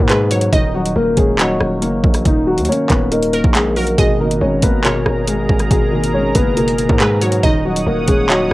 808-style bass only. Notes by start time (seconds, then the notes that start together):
0.00 G#2
0.53 D#1
0.96 D#1
1.17 D#1
1.61 D#1
1.82 F#1
2.04 A#1
2.25 D#1
2.58 D#2
2.90 D#1
3.44 A#1
3.98 G#1
4.41 G#1
4.63 G#1
5.06 G#1
5.49 G#1
5.71 G#1
6.35 F#1
6.89 G#2
7.43 D#1
7.87 D#1
8.08 D#1